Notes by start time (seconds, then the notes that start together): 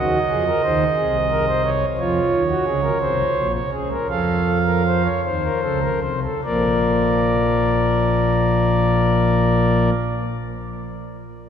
Already playing: D#2 D#3 F#4 D#5
0.30 F2 F3 G#4
0.47 A#4
0.63 D#2 D#3 C5
0.96 C2 C3 G#4
1.31 A#4
1.47 C5
1.65 C#5
1.98 F2 F3 F4 C#5
2.32 D#2 D#3
2.49 F#4
2.65 C#2 C#3 G#4
2.82 A#4
3.00 C2 C3 C5
3.36 A#1 A#2
3.54 C#5
3.72 C#2 C#3 G#4
3.91 A#4
4.09 F2 F3 A4 F5
4.67 A#4
4.86 C5
5.05 C#5
5.25 D#2 D#3 C5
5.44 A#4
5.62 C#2 C#3 A4
5.82 A#4
6.02 C2 C3 C5
6.23 A4
6.44 A#1 A#2 F3 A#3 A#4 D5